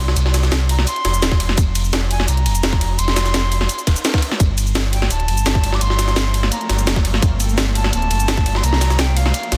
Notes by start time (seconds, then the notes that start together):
Already playing: C2 C6
0.08 snare
0.16 C2, closed hi-hat, cabasa
0.26 snare
0.34 snare, closed hi-hat, ride, cabasa
0.43 snare, cabasa
0.52 snare, closed hi-hat, cabasa
0.69 A#5, closed hi-hat, open hi-hat, ride
0.79 snare
0.87 C6, closed hi-hat, cabasa
0.96 closed hi-hat
1.05 F1, snare, closed hi-hat, ride
1.14 closed hi-hat, cabasa
1.22 D#1, snare, closed hi-hat, cabasa
1.31 kick, snare
1.40 F1, closed hi-hat, open hi-hat, ride
1.49 snare
1.58 F1, kick, closed hi-hat, cabasa
1.75 closed hi-hat, ride, cabasa
1.84 cabasa
1.93 snare, closed hi-hat, open hi-hat, cabasa
2.11 G#5, closed hi-hat, open hi-hat, ride
2.20 snare
2.28 C2 A#5, closed hi-hat, cabasa
2.37 closed hi-hat
2.46 F1, closed hi-hat, ride
2.55 closed hi-hat, cabasa
2.63 snare, closed hi-hat, cabasa
2.73 kick, snare
2.81 closed hi-hat, open hi-hat, ride
2.98 F1 C6, closed hi-hat, cabasa
3.08 snare, closed hi-hat
3.16 snare, closed hi-hat, open hi-hat, ride, cabasa
3.25 snare, closed hi-hat, cabasa
3.34 snare, closed hi-hat, cabasa
3.52 closed hi-hat, open hi-hat, ride, cabasa
3.61 snare
3.69 closed hi-hat, cabasa
3.79 closed hi-hat, cabasa
3.87 D#1, kick, snare, closed hi-hat, ride
3.96 closed hi-hat, cabasa
4.05 snare, closed hi-hat, open hi-hat, cabasa
4.09 snare, open hi-hat
4.14 kick, snare, open hi-hat
4.18 snare, open hi-hat
4.22 closed hi-hat, open hi-hat, ride
4.31 snare
4.40 G1 F3 A3 A#3 C4, kick, closed hi-hat, cabasa
4.58 closed hi-hat, ride, cabasa
4.67 cabasa
4.75 snare, closed hi-hat, open hi-hat, cabasa
4.93 G5, closed hi-hat, open hi-hat, ride
5.02 snare
5.11 D1 A5, closed hi-hat, cabasa
5.20 closed hi-hat
5.28 G1, closed hi-hat, ride
5.37 closed hi-hat, cabasa
5.46 snare, closed hi-hat, cabasa
5.55 kick, snare
5.63 closed hi-hat, open hi-hat, ride
5.73 D6, snare
5.81 G1 C6, closed hi-hat, cabasa
5.90 snare
5.99 snare, closed hi-hat, ride, cabasa
6.08 snare, cabasa
6.16 snare, closed hi-hat, cabasa
6.34 closed hi-hat, open hi-hat, ride
6.43 snare
6.52 A#5, closed hi-hat, cabasa
6.61 closed hi-hat
6.69 G1, snare, closed hi-hat, ride
6.79 closed hi-hat, cabasa
6.87 F1, snare, closed hi-hat, cabasa
6.96 kick, snare
7.05 G1, closed hi-hat, open hi-hat, ride
7.14 snare
7.22 G1, kick, closed hi-hat, cabasa
7.40 closed hi-hat, ride, cabasa
7.49 cabasa
7.58 snare, closed hi-hat, open hi-hat, cabasa
7.75 A5, closed hi-hat, open hi-hat, ride
7.84 snare
7.93 D1 A5, closed hi-hat, cabasa
8.02 closed hi-hat
8.11 G1, closed hi-hat, ride
8.20 closed hi-hat, cabasa
8.28 snare, closed hi-hat, cabasa
8.37 kick, snare
8.46 closed hi-hat, open hi-hat, ride
8.55 C6, snare
8.63 C2 F3 D4 D#4 A#4 A#5, closed hi-hat, cabasa
8.73 snare
8.81 snare, closed hi-hat, ride, cabasa
8.90 snare, cabasa
8.99 G5, snare, closed hi-hat, cabasa
9.17 F5, closed hi-hat, open hi-hat, ride
9.26 snare
9.34 closed hi-hat, cabasa
9.43 closed hi-hat
9.52 A#1, snare, closed hi-hat, ride